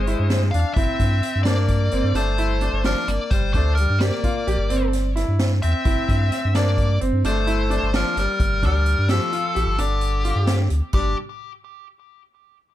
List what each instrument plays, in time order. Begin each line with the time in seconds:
Already playing: sub bass G1, alto saxophone G#3, lead electric guitar C5
0.07 grand piano E4, closed hi-hat
0.19 sub bass G2
0.30 snare, closed hi-hat
0.51 sub bass E2, alto saxophone D4, lead electric guitar F5, closed hi-hat
0.74 sub bass G1, alto saxophone C4, grand piano E4, lead electric guitar E5, kick, closed hi-hat
1.00 sub bass G2, kick, snare, closed hi-hat
1.23 closed hi-hat
1.35 sub bass G2
1.43 alto saxophone A#3, grand piano D4, lead electric guitar D5, snare, closed hi-hat
1.68 kick, closed hi-hat
1.91 sub bass G1, grand piano C4, closed hi-hat
2.03 sub bass G2
2.14 sub bass G1, alto saxophone A3, grand piano D4, lead electric guitar C5, snare, closed hi-hat
2.38 grand piano E4, closed hi-hat
2.61 grand piano D4, closed hi-hat
2.73 sub bass G1
2.84 alto saxophone F3, grand piano D4, lead electric guitar A#4, snare, closed hi-hat
3.08 sub bass G1, alto saxophone A#3, lead electric guitar D5, closed hi-hat
3.31 sub bass G1, alto saxophone G3, lead electric guitar C5, kick, closed hi-hat
3.54 sub bass D2, alto saxophone A3, grand piano D4, lead electric guitar C5, kick, closed hi-hat
3.75 lead electric guitar A#4, closed hi-hat
3.79 alto saxophone G3
3.90 sub bass G2
3.99 grand piano G4, lead electric guitar D5, snare, closed hi-hat
4.03 alto saxophone A#3
4.24 grand piano F4, kick, closed hi-hat
4.47 sub bass A#1, grand piano G4, closed hi-hat
4.58 sub bass G1
4.70 sub bass G1, grand piano C4, closed hi-hat
4.93 snare, closed hi-hat
5.16 grand piano E4, snare, closed hi-hat
5.28 sub bass G2
5.39 snare, closed hi-hat
5.62 sub bass E2, alto saxophone C4, lead electric guitar E5, closed hi-hat
5.85 sub bass G1, grand piano E4, kick, closed hi-hat
6.09 sub bass G2, kick, closed hi-hat
6.32 snare, closed hi-hat
6.45 sub bass G2
6.55 alto saxophone A#3, grand piano D4, lead electric guitar D5, snare, closed hi-hat
6.78 kick, closed hi-hat
7.01 sub bass G1, grand piano C4, closed hi-hat
7.13 sub bass G2
7.24 sub bass G1, alto saxophone A3, grand piano D4, lead electric guitar C5, snare, closed hi-hat
7.47 grand piano E4, closed hi-hat
7.70 grand piano D4, closed hi-hat
7.83 sub bass G1
7.93 alto saxophone F3, grand piano D4, lead electric guitar A#4, snare, closed hi-hat
8.16 sub bass G1, alto saxophone G3, lead electric guitar A#4, snare, closed hi-hat
8.40 sub bass G1, kick, closed hi-hat
8.62 sub bass D2, alto saxophone G3, grand piano D4, lead electric guitar A#4, kick, snare, closed hi-hat
8.86 closed hi-hat
8.98 sub bass G2
9.09 alto saxophone F3, grand piano G4, lead electric guitar A4, snare, closed hi-hat
9.32 grand piano F4, closed hi-hat
9.55 sub bass A#1, grand piano G4, closed hi-hat
9.67 sub bass G1
9.78 sub bass G1, alto saxophone D3, grand piano D4, lead electric guitar G4, closed hi-hat
10.01 closed hi-hat
10.25 grand piano F4, closed hi-hat
10.35 sub bass G2
10.47 snare, closed hi-hat
10.70 sub bass D2, closed hi-hat
10.93 sub bass G1, grand piano G3, alto saxophone D4, lead electric guitar G4, kick, splash